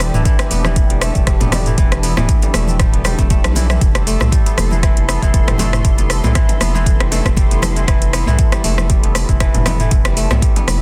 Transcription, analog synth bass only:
Already playing: E1
0.14 D1
0.51 E1
0.90 E1
1.16 E1
1.41 E1
1.78 E1
2.17 D1
2.54 E1
2.94 E1
3.19 E1
3.44 B1
3.81 F1
4.21 C2
4.58 F1
4.97 F1
5.22 F1
5.48 F1
5.84 F1
6.24 C2
6.61 F1
7.00 F1
7.25 F1
7.51 F1
7.88 F1
8.27 C2
8.64 F1
9.03 F1
9.29 F1
9.54 F1
9.91 F1
10.30 C2
10.67 F1

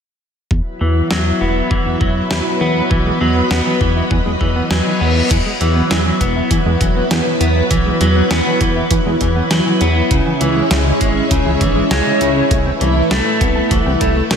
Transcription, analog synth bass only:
0.51 E2
0.81 E2
1.11 E2
1.41 E1
1.71 E2
1.86 E2
2.01 E1
2.31 E2
2.61 E2
2.91 B1
3.21 E2
3.51 E2
3.81 E2
4.11 E2
4.26 E2
4.41 E2
4.71 E2
5.01 E2
5.31 E2
5.61 E2
5.91 E2
6.21 E1
6.51 E2
6.66 E2
6.81 E1
7.11 E2
7.41 E2
7.71 B1
8.01 E2
8.31 E2
8.61 E2
8.91 E2
9.06 E2
9.21 E2
9.51 E2
9.81 E2
10.11 C#2
10.41 C#2
10.71 C#2
11.01 G#1
11.31 C#2
11.46 C#2
11.61 G#1
11.91 C#2
12.21 C#2
12.51 C2
12.81 C2
13.11 C2
13.41 C2
13.71 C2
13.86 C2
14.01 C2
14.31 C2

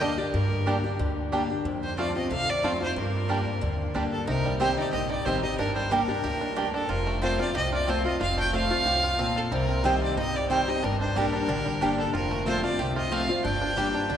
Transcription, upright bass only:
Already playing: D2
0.34 G2
1.00 D2
1.65 F2
2.31 D#2
2.63 F2
2.96 G2
3.62 D#2
3.95 D2
4.28 C2
4.93 A#1
5.26 A1
5.59 G1
6.24 D2
6.89 F1
7.55 C2
8.21 F1
8.85 C2
9.52 C2
10.17 G1
10.83 G1
11.16 A#1
11.48 A1
11.81 G1
12.14 F1
12.79 C2
13.45 G1
14.10 D2

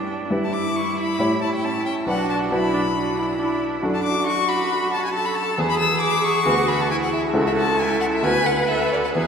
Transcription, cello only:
Already playing: D4
0.30 E4
2.07 F#4
2.53 E4
2.95 D4
3.40 E4
3.83 D4
4.26 F#4
5.15 A4
5.59 G#4
6.46 F#4
6.91 E4
7.37 F#4
7.82 E4
8.27 B4
8.71 A4
9.15 G#4

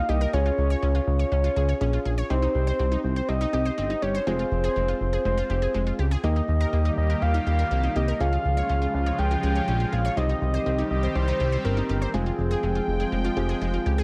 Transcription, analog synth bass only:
0.09 C2
0.33 C#2
0.58 C#2
0.83 C#2
1.07 C#2
1.32 C#2
1.56 C#2
1.81 A#1
2.06 A#1
2.30 C2
2.55 C2
2.79 C2
3.04 C2
3.28 C2
3.53 C2
3.78 G1
4.02 G1
4.27 F1
4.51 F1
4.76 F1
5.01 F1
5.25 F1
5.50 F1
5.74 F1
5.99 C#2
6.24 D#2
6.48 D#2
6.73 D#2
6.97 D#2
7.22 D#2
7.46 D#2
7.71 C2
7.96 C2
8.20 C#2
8.45 C#2
8.70 C#2
8.94 C#2
9.19 C#2
9.43 C#2
9.68 A#1
9.92 A#1
10.17 C2
10.42 C2
10.66 C2
10.91 C2
11.15 C2
11.40 C2
11.65 G1
11.89 G1
12.14 F1
12.38 F1
12.63 F1
12.88 F1
13.12 F1
13.37 F1
13.61 F1
13.86 C#2

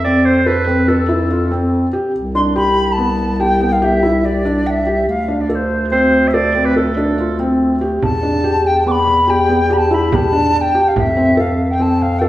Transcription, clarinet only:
0.04 D5
0.25 C5
0.47 B4
0.88 A4
5.92 C5
6.28 E5
6.34 D5
6.65 B4
6.77 A4

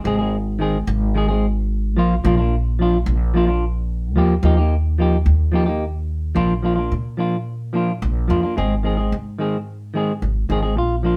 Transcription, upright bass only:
0.05 G#1
0.87 G#1
1.97 A#1
2.25 A#1
3.06 A#1
4.16 D#2
4.43 D#2
5.26 D#2
6.36 A#1
6.92 A#2
8.02 A#1
8.30 F2
8.58 G#1
9.12 G#2
10.22 G#1
10.50 G#1
10.77 A#1

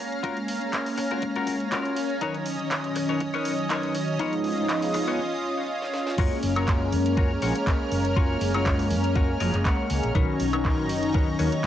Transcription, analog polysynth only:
Already playing: G#3 A#3 C#4
0.24 G#3 A#3 C#4
0.61 G#3 A#3 C#4
2.21 D#3 F#3 C#4
2.59 D#3 F#3 C#4
4.20 F3 G#3 B3 D#4
4.57 F3 G#3 B3 D#4
6.18 G#3 A#3 C#4
6.56 G#3 A#3 C#4
7.41 F3 G#3 A#3 C#4
7.55 G#3 A#3 C#4
8.16 G#3 A#3 C#4
8.54 G#3 A#3 C#4
9.40 F3 G#3 A#3 C#4
9.53 G#3 A#3 C#4
10.14 D#3 F#3 C#4
10.52 D#3 F#3 C#4
11.38 D#3 F#3 A#3 C#4
11.51 D#3 F#3 C#4

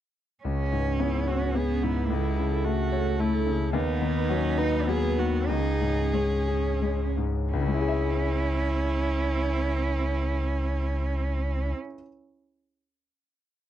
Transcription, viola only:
1.01 E4
1.27 F#4
1.56 G#4
1.83 E4
2.65 F#4
3.20 E4
3.74 D#4
4.89 G#4
5.19 F#4
5.51 G#4
7.54 E4

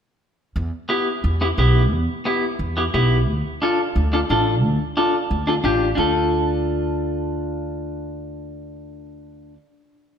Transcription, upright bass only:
0.56 E2
1.24 E2
1.58 B1
1.93 E2
2.59 E2
2.94 B1
3.28 D2
3.96 D2
4.30 A1
4.63 D2
5.31 D2
5.64 A1
5.98 D2

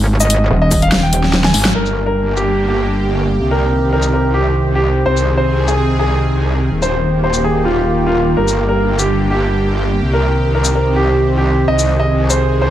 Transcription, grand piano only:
0.20 D#5
0.62 D#5
0.82 F5
1.03 G5
1.44 G#5
1.75 A#4
2.06 A#4
2.37 G4
2.68 G4
3.51 A#4
3.93 A#4
4.13 A#4
4.34 G4
4.75 G4
5.06 C5
5.37 C5
5.68 G#4
5.99 G#4
6.82 C5
7.24 C5
7.44 G#4
7.65 F4
8.06 F4
8.37 A#4
8.69 A#4
8.99 G4
9.31 G4
10.13 A#4
10.55 A#4
10.75 A#4
10.96 G4
11.38 G4
11.68 D#5
12.00 D#5
12.30 C5
12.62 C5

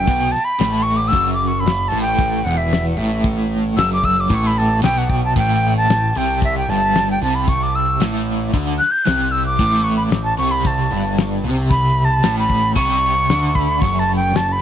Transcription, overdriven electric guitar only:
0.07 B2
0.59 A2
1.12 F#2
1.66 F#2
1.92 A2
2.45 E2
2.97 A2
3.77 F#2
4.29 A2
4.83 B2
5.36 A2
5.90 A2
6.16 C3
6.69 G2
7.22 C3
8.01 A2
8.54 D3
9.07 C3
9.59 A2
10.12 A2
10.39 C3
10.91 G2
11.44 C3
12.23 A2
12.75 C3
13.30 D3
13.82 F#2
14.34 F#2

